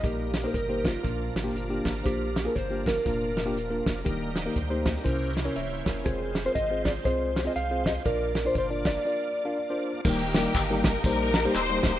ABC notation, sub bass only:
X:1
M:4/4
L:1/8
Q:"Swing" 1/4=120
K:Eb
V:1 name="Sub bass" clef=bass
B,,,2 G,,,2 B,,, A,,, G,,, A,,, | B,,,2 G,,,2 F,,,2 E,,, F,,, | E,,,2 D,,2 C,,2 _D,,, =E,,, | F,,,2 A,,,2 C,,2 C,,2 |
B,,,2 G,,,2 z4 | E,,,2 G,,,2 B,,,2 E,,, D,,, |]